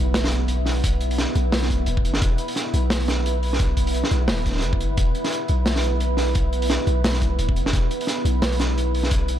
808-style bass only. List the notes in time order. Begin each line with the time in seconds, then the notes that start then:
Already playing: B1
1.36 B1
1.87 D1
2.05 G1
2.22 E1
2.74 B1
4.11 B1
4.29 D1
4.63 G1
4.98 E1
5.49 B1
6.87 B1
7.39 D1
7.56 G1
7.73 E1
8.25 B1